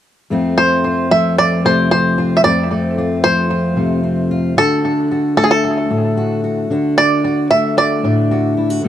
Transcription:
0.30 F2 A3 C4 F4
0.57 A3 C5
0.84 F4
1.11 F3 A3 E5
1.38 F4 D5
1.64 C3 A3 C5
1.91 C4 C5
2.18 F4
2.37 E5
2.44 F2 A3 C4 F4 D5
2.71 A3
2.98 F4
3.24 F3 A3 C5
3.50 F4
3.76 C3 A3
4.04 C4
4.31 F4
4.57 D3 D4 F#4 A4
4.85 D4
5.11 F#4
5.37 A3 D4 A4
5.44 G#4
5.51 A4
5.64 F#4
5.90 A2 D4
6.17 F#4
6.44 F#4
6.70 D3 D4 F#4
6.98 D4 D5
7.24 F#4
7.50 A3 D4 E5
7.77 F#4 D5
8.03 A2 D4
8.31 F#4
8.57 E4
8.70 F#4
8.83 B2 A3 D4

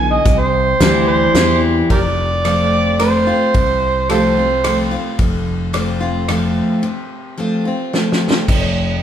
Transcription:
Already playing: B1 D3 G#5
0.12 D#5
0.25 C2 C3, kick, closed hi-hat
0.39 C5
0.80 D2 E3 G3 C4 E4, snare, closed hi-hat
1.07 C5
1.34 E2 E3 G3 C4 E4, snare, closed hi-hat
1.90 F1 F2 G4 A#4 D5, kick, ride
2.45 F3 A3 C4 F4, cross-stick, ride
2.99 F3 A3 C4 F4 C5, cross-stick, ride
3.27 C4 F4
3.54 C2 C3, kick, ride
4.10 F3 A3 C4 F4 G4 A4 C5, cross-stick, ride
4.37 C4 F4
4.64 F3 A3 C4 F4, cross-stick, ride
4.91 C4 F4
5.19 F1 F2, kick, ride
5.73 F3 A3 C4 F4, cross-stick, ride
6.00 C4 F4
6.28 F3 A3 C4 F4, cross-stick, ride
6.83 C3
7.38 F3 A3 C4 F4
7.65 C4 F4
7.93 F3 A3 C4 F4, snare
8.12 snare
8.31 snare
8.48 F1 F2, kick, crash

